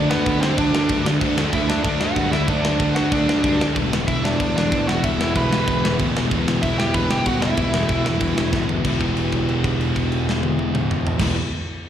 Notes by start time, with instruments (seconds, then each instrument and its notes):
Already playing: distorted electric guitar D3 F#3 A3 D4
0.09 picked electric bass D2, lead electric guitar B3 B4, snare
0.26 picked electric bass D2, distorted electric guitar D3 F#3 A3 D4, kick, crash
0.41 distorted electric guitar D3 F#3 A3 D4, lead electric guitar C4 C5, snare
0.57 picked electric bass D2, distorted electric guitar D3 F#3 A3 D4, lead electric guitar D4 D5, kick, crash
0.73 picked electric bass D2, snare
0.89 picked electric bass G2, distorted electric guitar D3 F#3 A3 D4, kick, crash
1.05 picked electric bass D2, distorted electric guitar D3 F#3 A3 D4, snare
1.21 picked electric bass D2, distorted electric guitar D3 F#3 A3 D4, kick, crash
1.37 picked electric bass D2, snare
1.53 picked electric bass D2, distorted electric guitar D3 F#3 A3 D4, lead electric guitar E4 E5, kick, crash
1.68 distorted electric guitar D3 F#3 A3 D4, lead electric guitar D4 D5, snare
1.84 picked electric bass D2, distorted electric guitar D3 F#3 A3 D4, lead electric guitar D4 D5, kick, crash
2.00 picked electric bass D2, lead electric guitar F#4 F#5, snare
2.16 picked electric bass G2, distorted electric guitar D3 F#3 A3 D4, kick, crash
2.32 picked electric bass D2, distorted electric guitar D3 F#3 A3 D4, lead electric guitar E4 E5, snare
2.47 picked electric bass D2, distorted electric guitar D3 F#3 A3 D4, lead electric guitar D4 D5, kick, crash
2.65 picked electric bass D2, snare
2.79 picked electric bass D2, distorted electric guitar D3 F#3 A3 D4, kick, crash
2.95 distorted electric guitar D3 F#3 A3 D4, lead electric guitar F#4 F#5, snare
3.11 picked electric bass D2, distorted electric guitar D3 F#3 A3 D4, lead electric guitar D4 D5, kick, crash
3.28 picked electric bass D2, snare
3.43 picked electric bass G2, distorted electric guitar D3 F#3 A3 D4, lead electric guitar D4 D5, kick, crash
3.60 picked electric bass D2, distorted electric guitar D3 F#3 A3 D4, snare
3.75 picked electric bass E1, distorted electric guitar E2 B2 E3 G3 B3 E4, kick, crash
3.93 picked electric bass E1, snare
4.08 picked electric bass E1, distorted electric guitar E3 G3 B3 E4, lead electric guitar E4 E5, kick, crash
4.23 distorted electric guitar E2 B2 E3 G3 B3 E4, lead electric guitar D4 D5, snare
4.40 picked electric bass E1, distorted electric guitar E3 G3 B3 E4, kick, crash
4.56 picked electric bass E1, lead electric guitar D4 D5, snare
4.71 picked electric bass A1, distorted electric guitar E2 B2 E3 G3 B3 E4, kick, crash
4.87 picked electric bass E1, distorted electric guitar E3 G3 B3 E4, lead electric guitar F#4 F#5, snare
5.03 picked electric bass E1, distorted electric guitar E2 B2 E3 G3 B3 E4, lead electric guitar E4 E5, kick, crash
5.20 picked electric bass E1, snare
5.35 picked electric bass E1, distorted electric guitar E3 G3 B3 E4, lead electric guitar B4 B5, kick, crash
5.52 distorted electric guitar E2 B2 E3 G3 B3 E4, snare
5.67 picked electric bass E1, distorted electric guitar E3 G3 B3 E4, kick, crash
5.84 picked electric bass E1, snare
5.98 picked electric bass A1, distorted electric guitar E2 B2 E3 G3 B3 E4, kick, crash
6.15 picked electric bass E1, distorted electric guitar E3 G3 B3 E4, snare
6.31 picked electric bass E1, distorted electric guitar E2 B2 E3 G3 B3 E4, kick, crash
6.48 picked electric bass E1, snare
6.62 picked electric bass E1, distorted electric guitar E3 G3 B3 E4, lead electric guitar E4 E5, kick, crash
6.78 distorted electric guitar E2 B2 E3 G3 B3 E4, lead electric guitar G4 G5, snare
6.94 picked electric bass E1, distorted electric guitar E3 G3 B3 E4, lead electric guitar B4 B5, kick, crash
7.11 picked electric bass E1, lead electric guitar G4 G5, snare
7.25 picked electric bass A1, distorted electric guitar E2 B2 E3 G3 B3 E4, lead electric guitar F#4 F#5, kick, crash
7.41 picked electric bass E1, distorted electric guitar E3 G3 B3 E4, lead electric guitar E4 E5, snare
7.57 picked electric bass E1, distorted electric guitar E2 B2 E3 G3 B3 E4, kick, crash
7.74 picked electric bass E1, snare
7.88 picked electric bass E1, distorted electric guitar E3 G3 B3 E4, kick, crash
8.04 distorted electric guitar E2 B2 E3 G3 B3 E4, snare
8.20 picked electric bass E1, distorted electric guitar E3 G3 B3 E4, kick, crash
8.37 picked electric bass E1, snare
8.52 picked electric bass A1, distorted electric guitar E2 B2 E3 G3 B3 E4, kick, snare
8.68 picked electric bass E1, distorted electric guitar E3 G3 B3 E4, floor tom
8.83 picked electric bass E1, distorted electric guitar E2 B2 E3 B3 E4 G4, kick, crash
8.87 distorted electric guitar E3 B4
9.01 kick, crash
9.17 crash
9.32 kick, crash
9.49 crash
9.64 kick, crash
9.80 crash
9.96 kick, crash
10.12 crash
10.29 snare
10.43 high tom
10.59 high tom
10.75 mid tom
10.91 mid tom
11.07 floor tom
11.18 picked electric bass E1, distorted electric guitar E2 B2 E3 B3 E4 G4, kick, snare, crash
11.22 distorted electric guitar E3 B4